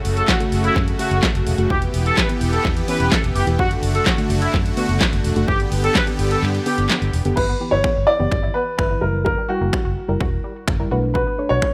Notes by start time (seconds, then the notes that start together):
Already playing: C#3 A3 F#4
0.05 F#1, open hi-hat
0.17 A4, closed hi-hat
0.28 F#4, kick, snare, clap
0.40 C#3 A3 F#4, closed hi-hat
0.52 F#1, open hi-hat
0.64 E4, closed hi-hat
0.76 F#2, kick, clap
0.88 closed hi-hat
0.99 C#3 A3 F#4, open hi-hat
1.11 F#1, closed hi-hat
1.23 kick, snare, clap
1.35 F#1, closed hi-hat
1.47 E1, open hi-hat
1.58 F#1 C#3 A3 F#4, closed hi-hat
1.70 E1 E3 B3 G4, kick
1.82 closed hi-hat
1.94 E1, open hi-hat
2.05 A4, closed hi-hat
2.17 B4, kick, snare, clap
2.29 E3 B3 G4, closed hi-hat
2.41 E1, open hi-hat
2.53 A4, closed hi-hat
2.65 E2, kick, clap
2.77 closed hi-hat
2.88 E3 B3 C#4 B4, open hi-hat
3.00 E1, closed hi-hat
3.12 A4, kick, snare, clap
3.24 E1, closed hi-hat
3.35 F#1 G4, open hi-hat
3.47 E1 E3 B3 G4, closed hi-hat
3.59 F#1 F#4, kick
3.71 closed hi-hat
3.83 F#1, open hi-hat
3.94 A4, closed hi-hat
4.06 F#4, kick, snare, clap
4.18 D3 A3 F#4, closed hi-hat
4.30 F#1, open hi-hat
4.42 E4, closed hi-hat
4.54 F#2, kick, clap
4.66 closed hi-hat
4.77 D3 A3 B3 F#4, open hi-hat
4.89 F#1, closed hi-hat
5.01 kick, snare, clap
5.13 F#1, closed hi-hat
5.24 E1, open hi-hat
5.36 F#1 D3 A3 F#4, closed hi-hat
5.48 D3 B3 G4, kick
5.60 closed hi-hat
5.72 G1, open hi-hat
5.84 A4, closed hi-hat
5.95 B4, kick, snare, clap
6.07 D3 B3 G4, closed hi-hat
6.19 G1, open hi-hat
6.31 A4, closed hi-hat
6.43 G2, clap
6.55 closed hi-hat
6.66 D3 B3 G4, open hi-hat
6.78 G1, closed hi-hat
6.90 snare, clap
7.02 G1, closed hi-hat
7.13 E1, open hi-hat
7.25 F#1 D3 B3 G4, closed hi-hat
7.36 G1 E4 B4, kick, crash
7.49 B3
7.60 E3 B3 G4
7.71 G1 E4 C#5
7.84 B3, finger snap, kick
7.96 G1 G3
8.07 E4 D5
8.19 F#1 E3 B3 G4
8.31 G1, finger snap, kick
8.43 E4
8.54 B3 B4
8.78 G1 E4 B4, finger snap, kick
8.90 E3 B3 E4
9.01 F#1 G3 E4 A#4
9.25 A#3 A#4, kick
9.38 G3
9.49 G3 E4 F#4 G5
9.61 F#1 A#3
9.73 G3, finger snap, kick
9.85 F#1 F#4
10.08 F#1 G3 E4 A#4
10.20 E1 F#4, finger snap, kick
10.44 G3
10.68 F#1 A#3, finger snap, kick
10.79 G3 E4 A#4
10.91 B1 A3 D4 F#4 B4
11.14 F#4 B4, kick
11.27 B3
11.38 A3 D4 C#5
11.49 B1 F#4 C#5
11.62 B3, finger snap, kick